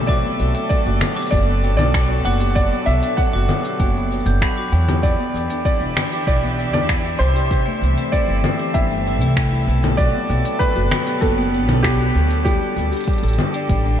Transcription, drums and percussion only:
0.08 kick loud
0.08 open hi-hat soft
0.08 cabasa soft
0.24 cabasa soft
0.40 cabasa medium
0.55 open hi-hat medium
0.55 cabasa soft
0.70 kick loud
0.70 open hi-hat soft
0.70 cabasa soft
0.87 cabasa soft
1.01 finger snap medium
1.01 low conga medium
1.01 cabasa medium
1.17 open hi-hat medium
1.17 cabasa soft
1.22 open hi-hat soft
1.27 open hi-hat soft
1.32 kick loud
1.32 open hi-hat soft
1.32 cabasa soft
1.37 open hi-hat soft
1.42 open hi-hat soft
1.48 cabasa soft
1.63 cabasa medium
1.79 open hi-hat medium
1.79 low conga medium
1.79 cabasa soft
1.94 finger snap medium
1.94 kick loud
1.94 open hi-hat soft
1.94 cabasa soft
2.10 cabasa soft
2.25 cabasa medium
2.41 open hi-hat medium
2.41 cabasa soft
2.56 kick loud
2.56 open hi-hat soft
2.56 cabasa soft
2.72 cabasa soft
2.88 cabasa medium
3.03 open hi-hat medium
3.03 cabasa soft
3.18 kick loud
3.18 open hi-hat soft
3.18 cabasa soft
3.35 cabasa soft
3.49 low conga medium
3.49 cabasa medium
3.65 open hi-hat medium
3.65 cabasa soft
3.80 kick loud
3.80 open hi-hat soft
3.80 cabasa soft
3.96 cabasa soft
4.12 cabasa medium
4.19 cabasa soft
4.27 open hi-hat medium
4.42 finger snap medium
4.42 kick loud
4.42 open hi-hat soft
4.42 cabasa soft
4.58 cabasa soft
4.74 cabasa medium
4.89 open hi-hat medium
4.89 low conga medium
4.89 cabasa soft
5.03 kick loud
5.03 open hi-hat soft
5.03 cabasa soft
5.20 cabasa soft
5.35 cabasa medium
5.50 open hi-hat medium
5.50 cabasa soft
5.65 kick loud
5.65 open hi-hat soft
5.65 cabasa soft
5.82 cabasa soft
5.97 finger snap medium
5.97 low conga medium
5.97 cabasa medium
6.12 open hi-hat medium
6.12 cabasa soft
6.27 kick loud
6.27 open hi-hat soft
6.27 cabasa soft
6.44 cabasa soft
6.59 cabasa medium
6.74 open hi-hat soft
6.74 low conga medium
6.74 cabasa soft
6.89 finger snap medium
6.89 kick loud
6.89 open hi-hat soft
6.89 cabasa soft
7.06 cabasa soft
7.21 cabasa medium
7.36 open hi-hat medium
7.36 cabasa soft
7.51 kick loud
7.51 open hi-hat soft
7.51 cabasa soft
7.68 cabasa soft
7.83 cabasa medium
7.98 open hi-hat medium
7.98 cabasa soft
8.13 kick medium
8.13 open hi-hat soft
8.13 cabasa soft
8.37 cabasa soft
8.44 low conga medium
8.44 cabasa medium
8.59 open hi-hat medium
8.59 cabasa soft
8.75 kick loud
8.75 open hi-hat soft
8.75 cabasa soft
8.91 cabasa soft
9.07 cabasa medium
9.21 open hi-hat medium
9.21 cabasa soft
9.37 finger snap medium
9.37 kick loud
9.37 open hi-hat soft
9.37 cabasa soft
9.53 cabasa soft
9.69 cabasa medium
9.84 open hi-hat medium
9.84 low conga medium
9.84 cabasa soft
9.98 kick loud
9.98 open hi-hat soft
9.98 cabasa soft
10.15 cabasa soft
10.30 cabasa medium
10.45 open hi-hat medium
10.45 cabasa soft
10.60 kick loud
10.60 open hi-hat soft
10.60 cabasa soft
10.77 cabasa soft
10.91 finger snap medium
10.91 low conga medium
10.91 cabasa medium
11.07 open hi-hat medium
11.07 cabasa soft
11.22 kick loud
11.22 open hi-hat soft
11.22 cabasa soft
11.39 cabasa soft
11.54 cabasa medium
11.69 open hi-hat medium
11.69 low conga medium
11.69 cabasa soft
11.84 finger snap medium
11.84 kick loud
11.84 open hi-hat soft
11.84 cabasa soft
12.00 cabasa soft
12.16 cabasa medium
12.31 open hi-hat medium
12.31 cabasa soft
12.46 kick loud
12.46 open hi-hat soft
12.46 cabasa soft
12.63 cabasa soft
12.78 cabasa medium
12.93 open hi-hat soft
12.93 cabasa soft
12.97 open hi-hat soft
13.01 open hi-hat soft
13.04 kick loud
13.04 open hi-hat soft
13.09 cabasa soft
13.13 open hi-hat soft
13.18 open hi-hat soft
13.23 open hi-hat soft
13.23 cabasa soft
13.28 open hi-hat soft
13.33 open hi-hat soft
13.39 low conga medium
13.39 cabasa medium
13.54 open hi-hat medium
13.54 cabasa soft
13.69 kick loud
13.69 open hi-hat soft
13.69 cabasa soft
13.86 cabasa soft

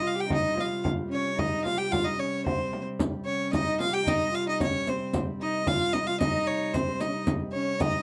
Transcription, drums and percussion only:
0.30 frame drum medium
0.57 frame drum medium
0.85 frame drum medium
1.39 frame drum medium
1.66 frame drum medium
1.93 frame drum medium
2.46 frame drum medium
2.73 frame drum medium
2.99 riq medium
2.99 frame drum medium
3.53 riq medium
3.53 frame drum medium
3.80 riq soft
3.80 frame drum medium
4.07 riq medium
4.07 frame drum medium
4.60 riq medium
4.60 frame drum medium
4.87 riq soft
4.87 frame drum medium
5.13 riq medium
5.13 frame drum medium
5.67 riq medium
5.67 frame drum medium
5.94 riq soft
5.94 frame drum medium
6.21 riq medium
6.21 frame drum medium
6.47 riq soft
6.74 riq medium
6.74 frame drum medium
7.00 riq soft
7.00 frame drum medium
7.27 riq medium
7.27 frame drum medium
7.80 riq medium
7.80 frame drum medium

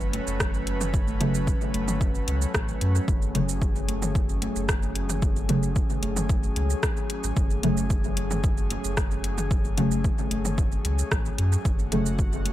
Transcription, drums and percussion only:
0.00 shaker soft
0.13 closed hi-hat medium
0.13 high conga medium
0.27 shaker medium
0.40 kick loud
0.40 cross-stick loud
0.40 shaker medium
0.54 shaker soft
0.67 closed hi-hat medium
0.81 mid tom medium
0.81 shaker medium
0.94 kick loud
0.94 shaker soft
1.08 high conga medium
1.08 shaker soft
1.21 closed hi-hat medium
1.21 mid tom medium
1.34 shaker medium
1.47 kick loud
1.47 shaker medium
1.61 shaker soft
1.74 closed hi-hat medium
1.74 high conga medium
1.88 mid tom loud
1.88 high conga medium
1.88 shaker medium
2.01 kick loud
2.01 shaker medium
2.15 shaker soft
2.28 closed hi-hat medium
2.42 shaker medium
2.54 kick loud
2.54 cross-stick loud
2.54 shaker medium
2.68 shaker soft
2.81 closed hi-hat medium
2.95 shaker medium
3.08 kick loud
3.08 shaker medium
3.22 shaker soft
3.35 closed hi-hat medium
3.35 mid tom medium
3.49 shaker medium
3.62 kick loud
3.62 shaker medium
3.76 shaker soft
3.88 closed hi-hat medium
3.88 high conga medium
4.02 mid tom loud
4.02 high conga medium
4.02 shaker medium
4.15 kick loud
4.15 shaker medium
4.29 shaker soft
4.42 closed hi-hat medium
4.42 high conga medium
4.56 shaker medium
4.69 kick loud
4.69 cross-stick loud
4.69 shaker medium
4.83 shaker soft
4.95 closed hi-hat medium
5.09 mid tom medium
5.09 shaker medium
5.22 kick loud
5.22 shaker medium
5.36 high conga medium
5.36 shaker soft
5.49 closed hi-hat medium
5.49 mid tom medium
5.63 shaker medium
5.76 kick loud
5.76 shaker medium
5.90 shaker soft
6.03 closed hi-hat medium
6.03 high conga medium
6.16 mid tom loud
6.16 high conga medium
6.16 shaker medium
6.29 kick loud
6.29 shaker medium
6.43 shaker soft
6.56 closed hi-hat medium
6.70 shaker medium
6.83 kick loud
6.83 cross-stick loud
6.83 shaker medium
6.97 shaker soft
7.10 closed hi-hat medium
7.24 shaker medium
7.37 kick loud
7.37 shaker medium
7.50 shaker soft
7.63 closed hi-hat medium
7.63 mid tom medium
7.77 shaker medium
7.90 kick loud
7.90 shaker medium
8.04 shaker soft
8.17 closed hi-hat medium
8.17 high conga medium
8.31 mid tom loud
8.31 high conga medium
8.31 shaker medium
8.44 kick loud
8.44 shaker medium
8.58 shaker soft
8.70 closed hi-hat medium
8.70 high conga medium
8.84 shaker medium
8.97 kick loud
8.97 cross-stick medium
8.97 shaker medium
9.11 shaker soft
9.24 closed hi-hat medium
9.38 mid tom medium
9.38 shaker medium
9.51 kick loud
9.51 shaker medium
9.65 high conga medium
9.65 shaker soft
9.78 closed hi-hat medium
9.78 mid tom medium
9.91 shaker medium
10.04 kick loud
10.04 shaker soft
10.18 shaker soft
10.31 closed hi-hat medium
10.31 high conga medium
10.45 mid tom medium
10.45 high conga medium
10.45 shaker medium
10.58 kick loud
10.58 shaker medium
10.72 shaker soft
10.85 closed hi-hat medium
10.99 shaker medium
11.12 kick loud
11.12 cross-stick medium
11.12 shaker medium
11.25 shaker soft
11.38 closed hi-hat medium
11.52 shaker medium
11.65 kick loud
11.65 shaker soft
11.79 shaker soft
11.92 closed hi-hat medium
11.92 mid tom medium
12.06 shaker medium
12.19 kick loud
12.19 shaker soft
12.33 shaker soft
12.46 closed hi-hat medium
12.46 high conga medium

